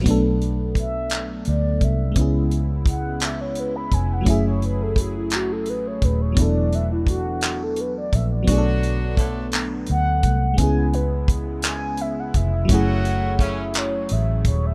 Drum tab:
HH |xxxxxx|xxxxxx|xxxxxx|xxxxxx|
CP |---x--|---x--|---x--|---x--|
BD |o-o--o|o-o--o|o-o--o|o-o--o|

HH |xxxxxx|xxxxxx|xxxxxx|
CP |---x--|---x--|---x--|
BD |o-o--o|o-o--o|o-o--o|